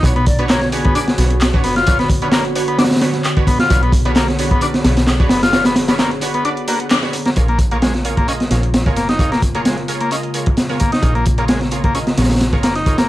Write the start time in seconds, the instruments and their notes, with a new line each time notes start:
0.03 picked electric bass B1, ambient pad D3 B3 F#4 C#5, synth stab D4 F#4 B4 C#5, kick, closed hi-hat
0.16 transistor combo organ B3, closed hi-hat
0.26 flute D5, kick, closed hi-hat, open hi-hat
0.39 transistor combo organ B3, synth stab D4 F#4 B4 C#5, closed hi-hat
0.49 transistor combo organ A#3, flute C#5, snare, clap, closed hi-hat
0.61 snare, closed hi-hat
0.72 synth stab D4 F#4 B4 C#5, flute G#4, closed hi-hat, open hi-hat
0.85 transistor combo organ B3, kick, closed hi-hat
0.95 transistor combo organ D4, synth stab D4 F#4 B4 D5, closed hi-hat
1.08 snare, closed hi-hat
1.18 picked electric bass B1, synth stab D4 F#4 B4 C#5, snare, closed hi-hat, open hi-hat
1.30 closed hi-hat
1.41 snare, clap, closed hi-hat
1.53 synth stab D4 F#4 B4 C#5, kick, closed hi-hat
1.64 picked electric bass F#1, transistor combo organ B3, snare, closed hi-hat, open hi-hat
1.76 transistor combo organ F4, snare, closed hi-hat
1.86 synth stab D4 F#4 B4 C#5, kick, closed hi-hat
1.99 transistor combo organ B3, snare, closed hi-hat
2.10 kick, closed hi-hat, open hi-hat
2.22 transistor combo organ B3, synth stab D4 F#4 B4 C#5, closed hi-hat
2.32 transistor combo organ A#3, snare, clap, closed hi-hat
2.45 closed hi-hat
2.55 synth stab D4 F#4 B4 C#5, closed hi-hat, open hi-hat
2.68 transistor combo organ B3, closed hi-hat
2.78 synth stab D4 F#4 B4 D5, transistor combo organ D4, snare, closed hi-hat
2.84 snare, closed hi-hat
2.90 snare, closed hi-hat
2.96 snare, closed hi-hat
3.01 synth stab D4 F#4 B4 C#5, snare, closed hi-hat, open hi-hat
3.13 snare, closed hi-hat
3.24 clap, closed hi-hat
3.37 synth stab D4 F#4 B4 C#5, kick, closed hi-hat
3.47 transistor combo organ B3, kick, closed hi-hat, open hi-hat
3.59 transistor combo organ F4, snare, closed hi-hat
3.70 picked electric bass B1, synth stab D4 F#4 B4 C#5, ambient pad G#4, kick, closed hi-hat
3.83 transistor combo organ B3, closed hi-hat
3.92 kick, closed hi-hat, open hi-hat
4.05 transistor combo organ B3, synth stab D4 F#4 B4 C#5, closed hi-hat
4.16 transistor combo organ A#3, snare, clap, closed hi-hat
4.28 snare, closed hi-hat
4.39 synth stab D4 F#4 B4 C#5, closed hi-hat, open hi-hat
4.51 transistor combo organ B3, kick, closed hi-hat
4.61 synth stab D4 F#4 B4 D5, transistor combo organ D4, closed hi-hat
4.74 snare, closed hi-hat
4.84 picked electric bass B1, synth stab D4 F#4 B4 C#5, snare, closed hi-hat, open hi-hat
4.97 snare, closed hi-hat
5.07 snare, clap, closed hi-hat
5.20 synth stab D4 F#4 B4 C#5, kick, closed hi-hat
5.29 picked electric bass F#1, transistor combo organ B3, snare, closed hi-hat, open hi-hat
5.43 transistor combo organ F4, snare, closed hi-hat
5.53 synth stab D4 F#4 B4 C#5, snare, closed hi-hat
5.65 transistor combo organ B3, snare, closed hi-hat
5.76 snare, closed hi-hat, open hi-hat
5.88 transistor combo organ B3, synth stab D4 F#4 B4 C#5, snare, closed hi-hat
5.99 transistor combo organ A#3, snare, clap, closed hi-hat
6.11 closed hi-hat
6.21 synth stab D4 F#4 B4 C#5, closed hi-hat, open hi-hat
6.34 transistor combo organ B3, closed hi-hat
6.45 synth stab D4 F#4 B4 D5, transistor combo organ D4, closed hi-hat
6.57 closed hi-hat
6.68 transistor combo organ A#3, synth stab D4 F#4 B4 F#5, closed hi-hat, open hi-hat
6.80 closed hi-hat
6.90 transistor combo organ D4, snare, clap, closed hi-hat
7.03 synth stab D4 F#4 B4 C#5, snare, closed hi-hat
7.13 picked electric bass D2, closed hi-hat, open hi-hat
7.26 transistor combo organ A#3, snare, closed hi-hat
7.36 picked electric bass A#1, ambient pad C#3 G#3 A#3 F4, synth stab F4 G#4 A#4 C#5, kick, closed hi-hat
7.48 transistor combo organ A#3, closed hi-hat
7.59 kick, closed hi-hat
7.71 transistor combo organ A#3, synth stab F4 G#4 A#4 C#5, closed hi-hat
7.82 transistor combo organ G#3, snare, closed hi-hat
7.94 snare, closed hi-hat
8.05 synth stab F4 G#4 A#4 C#5, closed hi-hat
8.17 transistor combo organ A#3, kick, closed hi-hat
8.28 transistor combo organ C#4, synth stab F4 G#4 A#4 D#5, closed hi-hat
8.40 snare, closed hi-hat
8.50 picked electric bass A#1, synth stab F4 G#4 A#4 C#5, snare, closed hi-hat
8.63 closed hi-hat
8.74 snare, closed hi-hat
8.86 synth stab F4 G#4 A#4 C#5, kick, closed hi-hat
8.96 picked electric bass F1, transistor combo organ A#3, snare, closed hi-hat
9.09 transistor combo organ D#4, snare, closed hi-hat
9.19 synth stab F4 G#4 A#4 C#5, kick, closed hi-hat
9.32 transistor combo organ A#3, snare, closed hi-hat
9.42 kick, closed hi-hat
9.55 transistor combo organ A#3, synth stab F4 G#4 A#4 C#5, closed hi-hat
9.65 transistor combo organ G#3, snare, closed hi-hat
9.78 closed hi-hat
9.88 synth stab F4 G#4 A#4 C#5, closed hi-hat
10.00 transistor combo organ A#3, closed hi-hat
10.11 transistor combo organ C#4, synth stab F4 G#4 A#4 D#5, closed hi-hat
10.23 closed hi-hat
10.34 synth stab F4 G#4 A#4 C#5, closed hi-hat
10.46 kick, closed hi-hat
10.57 snare, closed hi-hat
10.69 synth stab F4 G#4 A#4 C#5, snare, closed hi-hat
10.80 transistor combo organ A#3, kick, closed hi-hat
10.92 transistor combo organ D#4, snare, closed hi-hat
11.02 picked electric bass A#1, synth stab F4 G#4 A#4 C#5, kick, closed hi-hat
11.15 transistor combo organ A#3, closed hi-hat
11.26 kick, closed hi-hat
11.38 transistor combo organ A#3, synth stab F4 G#4 A#4 C#5, closed hi-hat
11.48 transistor combo organ G#3, snare, closed hi-hat
11.61 snare, closed hi-hat
11.71 synth stab F4 G#4 A#4 C#5, closed hi-hat
11.84 transistor combo organ A#3, kick, closed hi-hat
11.95 transistor combo organ C#4, synth stab F4 G#4 A#4 D#5, closed hi-hat
12.07 snare, closed hi-hat
12.17 picked electric bass A#1, synth stab F4 G#4 A#4 C#5, snare, closed hi-hat
12.24 snare, closed hi-hat
12.30 snare, closed hi-hat
12.35 snare, closed hi-hat
12.40 snare, closed hi-hat
12.53 synth stab F4 G#4 A#4 C#5, kick, closed hi-hat
12.63 picked electric bass F1, transistor combo organ A#3, snare, closed hi-hat
12.75 transistor combo organ D#4, snare, closed hi-hat
12.86 synth stab F4 G#4 A#4 C#5, kick, closed hi-hat
12.98 transistor combo organ A#3, snare, closed hi-hat